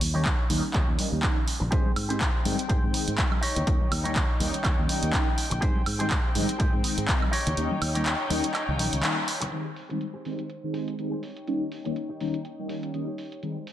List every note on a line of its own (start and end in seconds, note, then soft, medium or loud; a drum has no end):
0.01 0.33 D#2 loud
0.01 open hi-hat loud
0.01 tambourine medium
0.14 0.21 D#3 loud
0.14 0.21 G3 medium
0.14 0.21 A#3 medium
0.14 0.21 C#4 medium
0.14 0.44 D#4 medium
0.14 0.22 D#4 loud
0.14 0.44 G4 medium
0.14 0.45 C#5 medium
0.25 kick loud
0.25 clap loud
0.49 0.60 D#2 medium
0.49 0.63 D#3 loud
0.49 0.63 G3 medium
0.49 0.63 A#3 medium
0.49 0.64 C#4 medium
0.49 0.64 D#4 loud
0.49 open hi-hat loud
0.49 tambourine medium
0.49 high conga medium
0.73 0.84 D#2 medium
0.73 0.87 D#4 medium
0.73 0.88 G4 medium
0.73 0.88 C#5 medium
0.73 kick loud
0.73 clap medium
0.88 0.96 D#2 medium
0.88 1.20 D#3 medium
0.88 1.20 G3 medium
0.88 1.21 A#3 medium
0.88 1.21 C#4 medium
0.88 1.21 D#4 medium
0.98 muted clean electric guitar stroke soft
0.98 open hi-hat loud
0.98 tambourine medium
0.98 high conga medium
1.12 1.20 D#2 medium
1.12 tambourine soft
1.23 1.36 D#3 medium
1.23 1.37 G3 medium
1.23 1.37 A#3 medium
1.23 1.37 C#4 medium
1.23 1.37 D#4 loud
1.23 kick loud
1.23 clap loud
1.48 open hi-hat loud
1.48 tambourine medium
1.60 1.69 A#1 medium
1.60 muted clean electric guitar stroke medium
1.60 tambourine soft
1.60 low conga medium
1.71 1.82 G#2 medium
1.71 1.85 D#3 medium
1.71 1.85 G3 medium
1.71 1.86 G#3 medium
1.71 3.41 C4 medium
1.71 1.86 C4 medium
1.71 1.86 D#4 medium
1.71 1.90 G4 loud
1.71 1.91 G#4 loud
1.71 1.91 C5 loud
1.71 3.41 G5 medium
1.71 kick loud
1.71 closed hi-hat soft
1.71 tambourine soft
1.85 high conga medium
1.96 2.28 G#2 loud
1.96 open hi-hat loud
1.96 high woodblock medium
2.09 2.16 D#3 loud
2.09 2.16 G3 medium
2.09 2.16 G#3 medium
2.09 2.17 C4 medium
2.09 2.17 D#4 loud
2.09 2.39 G4 medium
2.09 2.39 G#4 medium
2.09 2.40 C5 medium
2.09 closed hi-hat medium
2.21 kick loud
2.21 clap loud
2.21 closed hi-hat medium
2.44 2.55 G#2 medium
2.44 2.58 D#3 medium
2.44 2.58 G3 medium
2.44 2.58 G#3 medium
2.44 2.59 C4 medium
2.44 2.59 D#4 loud
2.44 open hi-hat loud
2.44 tambourine medium
2.44 high conga medium
2.59 closed hi-hat medium
2.68 2.79 G#2 medium
2.68 2.82 G4 medium
2.68 2.83 G#4 medium
2.68 2.83 C5 medium
2.68 kick loud
2.68 closed hi-hat medium
2.83 2.91 G#2 medium
2.83 3.15 D#3 medium
2.83 3.16 G#3 medium
2.83 3.16 C4 medium
2.83 3.16 D#4 medium
2.93 muted clean electric guitar stroke soft
2.93 open hi-hat loud
2.93 tambourine medium
3.08 3.15 G#2 medium
3.08 closed hi-hat medium
3.18 3.32 D#3 loud
3.18 3.32 G3 medium
3.18 3.32 G#3 medium
3.18 3.32 C4 medium
3.18 3.32 D#4 loud
3.18 kick loud
3.18 clap loud
3.18 closed hi-hat soft
3.31 high conga medium
3.31 high woodblock medium
3.41 3.91 D#4 medium
3.41 5.60 D#4 medium
3.41 3.91 G4 medium
3.41 5.60 C#5 medium
3.41 3.92 C#5 loud
3.41 7.29 G5 medium
3.41 open hi-hat loud
3.55 3.64 D#2 medium
3.55 closed hi-hat medium
3.55 tambourine soft
3.55 low conga medium
3.67 3.80 D#3 medium
3.67 3.80 G3 medium
3.67 3.81 A#3 medium
3.67 3.81 C#4 medium
3.67 3.81 D#4 medium
3.67 kick loud
3.67 closed hi-hat medium
3.67 tambourine soft
3.81 high conga medium
3.91 4.23 D#2 loud
3.91 open hi-hat loud
3.91 tambourine medium
3.91 high woodblock medium
4.04 4.12 D#3 loud
4.04 4.12 G3 medium
4.04 4.12 A#3 medium
4.04 4.12 C#4 medium
4.04 4.34 D#4 medium
4.04 4.12 D#4 loud
4.04 4.35 G4 medium
4.04 4.35 C#5 loud
4.04 closed hi-hat medium
4.16 kick loud
4.16 clap loud
4.16 closed hi-hat medium
4.40 4.50 D#2 medium
4.40 4.54 D#3 medium
4.40 4.54 G3 medium
4.40 4.54 A#3 medium
4.40 4.54 C#4 medium
4.40 4.54 D#4 loud
4.40 open hi-hat loud
4.40 tambourine medium
4.40 high conga medium
4.54 closed hi-hat medium
4.54 tambourine medium
4.63 4.74 D#2 medium
4.63 4.78 D#4 medium
4.63 4.78 G4 medium
4.63 4.79 C#5 medium
4.63 kick loud
4.63 clap medium
4.63 closed hi-hat medium
4.63 high woodblock medium
4.78 4.86 D#2 medium
4.78 5.11 D#3 medium
4.78 5.11 G3 medium
4.78 5.11 A#3 medium
4.78 5.11 C#4 medium
4.78 5.11 D#4 medium
4.88 muted clean electric guitar stroke soft
4.88 open hi-hat loud
4.88 tambourine medium
4.88 high conga medium
5.03 5.10 D#2 medium
5.03 closed hi-hat medium
5.13 5.27 D#3 medium
5.13 5.27 G3 medium
5.13 5.27 A#3 medium
5.13 5.27 C#4 medium
5.13 5.27 D#4 loud
5.13 kick loud
5.13 clap loud
5.13 closed hi-hat soft
5.38 open hi-hat loud
5.38 tambourine medium
5.50 5.59 A#1 medium
5.50 muted clean electric guitar stroke medium
5.50 closed hi-hat medium
5.50 tambourine soft
5.50 low conga medium
5.61 5.72 G#2 loud
5.61 5.75 D#3 medium
5.61 5.75 G3 medium
5.61 5.76 G#3 medium
5.61 5.76 C4 medium
5.61 7.31 C4 medium
5.61 5.76 D#4 medium
5.61 5.80 G4 loud
5.61 5.81 G#4 loud
5.61 5.81 C5 loud
5.61 kick loud
5.61 closed hi-hat medium
5.75 high conga medium
5.86 6.18 G#2 medium
5.86 open hi-hat loud
5.86 tambourine loud
5.86 high woodblock medium
5.99 6.07 D#3 loud
5.99 6.07 G3 medium
5.99 6.07 G#3 medium
5.99 6.07 C4 medium
5.99 6.07 D#4 loud
5.99 6.29 G4 medium
5.99 6.30 G#4 medium
5.99 6.30 C5 medium
5.99 closed hi-hat medium
6.10 kick loud
6.10 clap loud
6.10 closed hi-hat medium
6.35 6.45 G#2 medium
6.35 6.49 D#3 medium
6.35 6.49 G3 medium
6.35 6.49 G#3 medium
6.35 6.49 C4 medium
6.35 6.49 D#4 loud
6.35 open hi-hat loud
6.35 tambourine loud
6.35 high conga medium
6.48 closed hi-hat medium
6.48 tambourine medium
6.58 6.70 G#2 medium
6.58 6.73 G4 medium
6.58 6.73 G#4 medium
6.58 6.74 C5 medium
6.58 kick loud
6.58 closed hi-hat medium
6.73 6.81 G#2 medium
6.73 7.06 D#3 medium
6.73 7.06 G#3 medium
6.73 7.06 C4 medium
6.73 7.06 D#4 medium
6.83 muted clean electric guitar stroke soft
6.83 open hi-hat loud
6.83 tambourine loud
6.98 7.05 G#2 medium
6.98 closed hi-hat medium
6.98 tambourine medium
7.08 7.22 D#3 loud
7.08 7.22 G3 medium
7.08 7.22 G#3 medium
7.08 7.22 C4 medium
7.08 7.22 D#4 loud
7.08 kick loud
7.08 clap loud
7.08 closed hi-hat medium
7.22 high conga medium
7.22 high woodblock medium
7.31 7.81 D#4 medium
7.31 9.50 D#4 medium
7.31 7.81 G4 medium
7.31 9.50 C#5 medium
7.31 7.82 C#5 loud
7.31 9.50 G5 medium
7.31 open hi-hat medium
7.31 tambourine loud
7.47 7.54 D#2 medium
7.47 closed hi-hat medium
7.47 tambourine medium
7.47 low conga medium
7.57 7.67 D#2 loud
7.57 7.71 D#3 medium
7.57 7.71 G3 medium
7.57 7.71 A#3 medium
7.57 7.71 C#4 medium
7.57 7.71 D#4 medium
7.57 closed hi-hat medium
7.57 tambourine soft
7.71 high conga medium
7.82 8.13 D#2 loud
7.82 open hi-hat loud
7.82 high woodblock medium
7.94 8.02 D#3 loud
7.94 8.02 G3 medium
7.94 8.02 A#3 medium
7.94 8.02 C#4 medium
7.94 8.24 D#4 medium
7.94 8.02 D#4 loud
7.94 8.25 G4 medium
7.94 8.25 C#5 loud
7.94 closed hi-hat medium
7.94 tambourine medium
8.06 clap loud
8.06 closed hi-hat medium
8.30 8.40 D#2 medium
8.30 8.44 D#3 medium
8.30 8.44 G3 medium
8.30 8.44 A#3 medium
8.30 8.44 C#4 medium
8.30 8.44 D#4 loud
8.30 open hi-hat loud
8.30 tambourine loud
8.30 high conga loud
8.44 closed hi-hat medium
8.44 tambourine soft
8.53 8.68 D#4 medium
8.53 8.68 G4 medium
8.53 8.69 C#5 medium
8.53 clap medium
8.53 closed hi-hat medium
8.53 tambourine soft
8.53 high woodblock medium
8.68 8.79 C#2 loud
8.68 9.01 D#3 medium
8.68 9.01 G3 medium
8.68 9.01 A#3 medium
8.68 9.01 C#4 medium
8.68 9.01 D#4 medium
8.78 8.89 A#1 medium
8.78 muted clean electric guitar stroke soft
8.78 open hi-hat loud
8.78 tambourine loud
8.78 high conga medium
8.93 9.01 C#2 medium
8.93 closed hi-hat medium
8.93 tambourine soft
9.03 9.17 D#3 medium
9.03 9.17 G3 medium
9.03 9.17 A#3 medium
9.03 9.17 C#4 medium
9.03 9.17 D#4 loud
9.03 clap loud
9.03 closed hi-hat medium
9.03 tambourine soft
9.28 open hi-hat loud
9.28 tambourine medium
9.40 muted clean electric guitar stroke medium
9.40 closed hi-hat medium
9.40 tambourine medium
9.40 high conga medium
9.40 low conga medium
9.52 9.66 D#3 medium
9.52 9.66 G3 medium
9.52 9.66 G#3 medium
9.52 9.66 C4 medium
9.52 9.66 D#4 medium
9.52 11.21 C5 medium
9.52 closed hi-hat medium
9.76 open hi-hat loud
9.89 9.97 D#3 medium
9.89 9.97 G3 medium
9.89 9.97 G#3 medium
9.89 9.97 C4 medium
9.89 9.97 D#4 loud
9.89 muted clean electric guitar stroke loud
9.89 closed hi-hat medium
10.00 muted clean electric guitar stroke soft
10.00 closed hi-hat medium
10.14 10.32 G4 medium
10.14 10.32 G#4 medium
10.14 10.33 C5 medium
10.25 10.39 D#3 medium
10.25 10.39 G3 medium
10.25 10.39 G#3 medium
10.25 10.39 C4 medium
10.25 10.39 D#4 loud
10.25 open hi-hat loud
10.39 closed hi-hat medium
10.49 muted clean electric guitar stroke soft
10.49 closed hi-hat medium
10.63 10.96 D#3 medium
10.63 10.96 G#3 medium
10.63 10.96 C4 medium
10.63 10.96 D#4 medium
10.73 10.93 G4 loud
10.73 10.93 G#4 loud
10.73 10.94 C5 loud
10.73 open hi-hat loud
10.88 closed hi-hat medium
10.99 11.12 D#3 medium
10.99 11.12 G3 medium
10.99 11.12 G#3 medium
10.99 11.13 C4 medium
10.99 11.13 D#4 loud
10.99 closed hi-hat medium
11.11 11.22 G4 medium
11.11 11.23 G#4 medium
11.11 11.24 C5 loud
11.22 11.71 D#4 medium
11.22 13.40 D#4 medium
11.22 11.72 G4 medium
11.22 13.40 C#5 medium
11.22 11.72 C#5 medium
11.22 13.40 G5 medium
11.22 open hi-hat loud
11.37 closed hi-hat medium
11.47 11.61 D#3 medium
11.47 11.61 G3 medium
11.47 11.61 A#3 medium
11.47 11.61 C#4 medium
11.47 11.61 D#4 medium
11.47 closed hi-hat medium
11.72 open hi-hat loud
11.84 11.92 D#3 loud
11.84 11.92 G3 medium
11.84 11.92 A#3 medium
11.84 11.92 C#4 medium
11.84 11.92 D#4 loud
11.84 muted clean electric guitar stroke loud
11.84 closed hi-hat medium
11.95 muted clean electric guitar stroke soft
11.95 closed hi-hat medium
12.09 12.27 D#4 medium
12.09 12.27 G4 medium
12.09 12.28 C#5 medium
12.20 12.34 D#3 loud
12.20 12.34 G3 medium
12.20 12.34 A#3 medium
12.20 12.34 C#4 medium
12.20 12.34 D#4 loud
12.20 12.43 A#5 medium
12.20 open hi-hat loud
12.34 closed hi-hat medium
12.44 12.68 G5 medium
12.44 muted clean electric guitar stroke soft
12.44 closed hi-hat medium
12.59 12.91 D#3 medium
12.59 12.91 G3 medium
12.59 12.91 A#3 medium
12.59 12.92 C#4 medium
12.59 12.92 D#4 medium
12.68 12.88 D#4 loud
12.68 12.88 G4 loud
12.68 12.89 C#5 loud
12.68 12.92 F5 medium
12.68 open hi-hat loud
12.83 closed hi-hat medium
12.94 13.07 D#3 medium
12.94 13.07 G3 medium
12.94 13.08 A#3 medium
12.94 13.08 C#4 medium
12.94 13.08 D#4 loud
12.94 13.16 D#5 medium
12.94 closed hi-hat soft
13.07 13.42 D#4 medium
13.07 13.43 G4 medium
13.07 13.17 C#5 medium
13.18 13.41 C#5 medium
13.18 open hi-hat loud
13.32 closed hi-hat medium
13.42 13.56 D#3 medium
13.42 13.56 G3 medium
13.42 13.56 G#3 medium
13.42 13.56 C4 medium
13.42 13.56 D#4 medium
13.42 13.73 C5 medium
13.42 closed hi-hat soft
13.67 open hi-hat loud